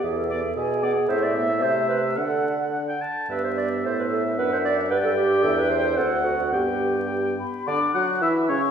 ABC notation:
X:1
M:2/4
L:1/16
Q:1/4=110
K:G
V:1 name="Flute"
e4 ^g2 f2 | e8 | f6 z2 | z4 e4 |
f4 d4 | e4 f4 | g4 g2 b2 | [K:D] d'2 f'2 e'2 c'2 |]
V:2 name="Oboe"
z2 d2 z2 d2 | e4 e4 | f4 f g a2 | e4 e4- |
e4 g4- | g4 f4 | g6 z2 | [K:D] d2 f2 e2 c2 |]
V:3 name="Clarinet"
^G A3 G4 | c d e2 c2 B2 | A4 z4 | B c d2 c B A2 |
B c d2 B A G2 | A B c2 A2 F2 | G6 z2 | [K:D] D2 F2 E2 C2 |]
V:4 name="French horn"
z2 B,2 z2 B,2 | C2 B,2 A,4 | D6 z2 | B,8 |
D8- | D4 C4 | B,6 z2 | [K:D] z4 E4 |]
V:5 name="Bassoon" clef=bass
E,,4 B,,4 | A,,4 C,4 | D,6 z2 | G,,4 A,,4 |
F,,4 G,,4 | E,,4 D,,4 | G,,6 z2 | [K:D] D,2 F,2 E,2 C,2 |]